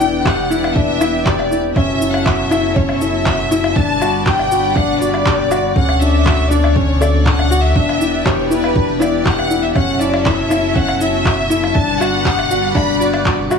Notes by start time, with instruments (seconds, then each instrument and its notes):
Already playing: sub bass E1, analog synth pad E3 B3 D4 G4, felt piano D4, violin section G5
0.00 felt piano E4, shaker
0.25 felt piano G4, violin section F#5, kick, clap, low woodblock
0.50 felt piano E4, shaker
0.64 low woodblock
0.74 felt piano D4, violin section E5, kick
1.01 felt piano E4, low woodblock, shaker
1.25 felt piano G4, violin section D5, kick, clap
1.39 low woodblock
1.51 felt piano E4, shaker
1.75 sub bass F#1, analog synth pad F#3 C#4 E4 A4, felt piano C#4, violin section E5, kick, low woodblock
2.01 felt piano E4, shaker
2.11 violin section F#5, low woodblock
2.25 felt piano F#4, violin section E5, kick, clap
2.51 felt piano E4, low woodblock, shaker
2.76 felt piano C#4, violin section C#5, kick
2.89 low woodblock
3.00 felt piano E4, violin section E5, shaker
3.26 felt piano F#4, kick, clap, low woodblock
3.51 felt piano E4, shaker
3.64 low woodblock
3.76 sub bass G1, analog synth pad G3 D4 B4 D5, felt piano D4, violin section A5, kick
4.01 felt piano F#4, low woodblock, shaker
4.25 felt piano G4, violin section G5, kick, clap
4.39 low woodblock
4.51 felt piano F#4, shaker
4.75 felt piano D4, violin section F#5, kick, low woodblock
5.00 felt piano F#4, violin section D5, shaker
5.14 low woodblock
5.26 felt piano G4, kick, clap
5.50 felt piano F#4, low woodblock, shaker
5.75 sub bass D2, analog synth pad D3 A3 C#5, felt piano C#4, violin section F#5, kick
5.89 low woodblock
6.00 felt piano D4, violin section E5, shaker
6.26 felt piano F#4, kick, clap, low woodblock
6.49 felt piano D4, violin section D5, shaker
6.64 low woodblock
6.75 felt piano C#4, violin section C#5, kick
7.01 felt piano A4, violin section D5, low woodblock, shaker
7.26 felt piano D4, violin section F#5, kick, clap
7.39 low woodblock
7.51 felt piano F#4, shaker
7.63 violin section E5
7.75 sub bass E1, analog synth pad E3 B3 D4 G4, felt piano D4, kick
7.89 low woodblock
8.01 felt piano E4, shaker
8.25 felt piano G4, violin section C#5, kick, clap, low woodblock
8.50 felt piano E4, violin section B4, shaker
8.64 low woodblock
8.76 felt piano D4, kick
9.00 felt piano E4, violin section D5, low woodblock, shaker
9.25 felt piano G4, violin section F#5, kick, clap
9.39 low woodblock
9.50 felt piano E4, shaker
9.63 violin section E5
9.75 sub bass F#1, analog synth pad F#3 C#4 E4 A4, felt piano C#4, violin section F#5, kick, low woodblock
10.00 felt piano E4, violin section D5, shaker
10.14 low woodblock
10.26 felt piano E4, violin section E5, kick, clap
10.50 felt piano E4, low woodblock, shaker
10.75 felt piano C#4, violin section F#5, kick
10.88 low woodblock
11.01 felt piano E4, violin section E5, shaker
11.25 felt piano F#4, kick, clap, low woodblock
11.50 felt piano E4, shaker
11.64 low woodblock
11.74 sub bass G1, analog synth pad G3 D4 B4 F#5, felt piano D4, violin section A5, kick
11.99 felt piano F#4, violin section F#5, low woodblock, shaker
12.25 felt piano G4, kick, clap
12.39 low woodblock
12.50 felt piano F#4, shaker
12.75 felt piano D4, violin section B5, kick, low woodblock
13.00 felt piano F#4, violin section D5, shaker
13.14 low woodblock
13.25 felt piano F#4, kick, clap
13.51 felt piano F#4, low woodblock, shaker